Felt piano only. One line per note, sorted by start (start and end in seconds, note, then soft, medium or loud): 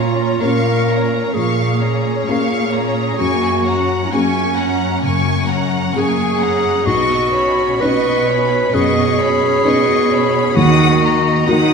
0.00 0.39 A#2 soft
0.42 1.31 A#3 soft
0.42 1.32 C#4 soft
0.42 1.31 A#4 soft
1.36 2.83 F3 soft
2.28 3.16 A#3 soft
2.28 3.16 C#4 soft
2.28 3.16 A#4 soft
3.20 4.09 F#2 soft
4.13 5.00 A#3 soft
4.13 5.00 C#4 soft
4.13 5.00 G#4 soft
5.03 6.50 C#3 soft
5.95 6.83 A#3 soft
5.95 6.83 C#4 soft
5.95 6.83 G#4 soft
6.86 7.78 B1 soft
7.82 8.70 C#4 soft
7.82 8.71 D#4 soft
7.82 8.71 B4 soft
8.74 10.20 F#2 soft
9.65 10.53 C#4 soft
9.65 10.53 D#4 soft
9.65 10.53 B4 soft
10.56 11.45 D#2 soft
11.47 11.73 A#3 soft
11.47 11.73 F#4 soft
11.47 11.73 A#4 soft